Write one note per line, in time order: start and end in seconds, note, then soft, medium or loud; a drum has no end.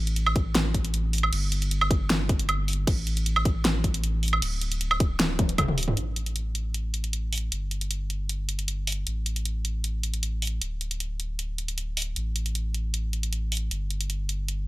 0.00 1.31 A1 medium
0.07 closed hi-hat medium
0.16 closed hi-hat medium
0.26 high woodblock medium
0.36 kick loud
0.36 closed hi-hat medium
0.55 snare loud
0.55 closed hi-hat medium
0.74 kick medium
0.74 closed hi-hat medium
0.85 closed hi-hat medium
0.94 closed hi-hat medium
1.13 open hi-hat medium
1.18 closed hi-hat medium
1.23 high woodblock medium
1.33 2.85 G1 medium
1.33 closed hi-hat medium
1.33 crash medium
1.52 closed hi-hat medium
1.62 closed hi-hat medium
1.71 closed hi-hat medium
1.81 high woodblock medium
1.91 kick loud
1.91 closed hi-hat medium
2.10 snare loud
2.10 closed hi-hat medium
2.29 kick loud
2.29 closed hi-hat medium
2.39 closed hi-hat medium
2.49 closed hi-hat medium
2.49 high woodblock medium
2.68 open hi-hat medium
2.73 closed hi-hat medium
2.87 4.40 A1 medium
2.87 kick loud
2.87 closed hi-hat medium
2.87 crash medium
3.07 closed hi-hat medium
3.17 closed hi-hat medium
3.26 closed hi-hat medium
3.36 high woodblock medium
3.45 kick loud
3.45 closed hi-hat medium
3.65 snare loud
3.65 closed hi-hat medium
3.84 kick medium
3.84 closed hi-hat medium
3.94 closed hi-hat medium
4.04 closed hi-hat medium
4.23 open hi-hat medium
4.28 closed hi-hat medium
4.33 high woodblock medium
4.42 5.95 D1 medium
4.42 closed hi-hat medium
4.42 crash soft
4.61 closed hi-hat medium
4.72 closed hi-hat medium
4.81 closed hi-hat medium
4.91 high woodblock medium
5.00 kick loud
5.00 closed hi-hat medium
5.20 snare loud
5.20 closed hi-hat medium
5.39 kick loud
5.39 closed hi-hat medium
5.39 high tom medium
5.49 closed hi-hat medium
5.58 kick medium
5.58 closed hi-hat medium
5.58 mid tom medium
5.58 high woodblock medium
5.68 mid tom medium
5.78 open hi-hat medium
5.83 closed hi-hat medium
5.88 mid tom medium
5.97 7.50 A1 medium
5.97 closed hi-hat medium
6.16 closed hi-hat medium
6.26 closed hi-hat medium
6.36 closed hi-hat medium
6.55 closed hi-hat medium
6.74 closed hi-hat medium
6.94 closed hi-hat medium
7.04 closed hi-hat medium
7.13 closed hi-hat medium
7.33 open hi-hat medium
7.38 closed hi-hat medium
7.52 9.05 G1 medium
7.52 closed hi-hat medium
7.71 closed hi-hat medium
7.81 closed hi-hat medium
7.91 closed hi-hat medium
8.10 closed hi-hat medium
8.29 closed hi-hat medium
8.49 closed hi-hat medium
8.59 closed hi-hat medium
8.68 closed hi-hat medium
8.87 open hi-hat medium
8.92 closed hi-hat medium
9.07 10.60 A1 medium
9.07 closed hi-hat medium
9.26 closed hi-hat medium
9.36 closed hi-hat medium
9.45 closed hi-hat medium
9.65 closed hi-hat medium
9.84 closed hi-hat medium
10.03 closed hi-hat medium
10.14 closed hi-hat medium
10.23 closed hi-hat medium
10.42 open hi-hat medium
10.47 closed hi-hat medium
10.62 12.15 D1 medium
10.62 closed hi-hat medium
10.81 closed hi-hat medium
10.91 closed hi-hat medium
11.00 closed hi-hat medium
11.20 closed hi-hat medium
11.39 closed hi-hat medium
11.58 closed hi-hat medium
11.68 closed hi-hat medium
11.78 closed hi-hat medium
11.97 open hi-hat medium
12.02 closed hi-hat medium
12.16 13.69 A1 medium
12.16 closed hi-hat medium
12.36 closed hi-hat medium
12.46 closed hi-hat medium
12.55 closed hi-hat medium
12.74 closed hi-hat medium
12.94 closed hi-hat medium
13.13 closed hi-hat medium
13.23 closed hi-hat medium
13.33 closed hi-hat medium
13.52 open hi-hat medium
13.57 closed hi-hat medium
13.71 14.68 G1 medium
13.71 closed hi-hat medium
13.90 closed hi-hat medium
14.01 closed hi-hat medium
14.10 closed hi-hat medium
14.29 closed hi-hat medium
14.48 closed hi-hat medium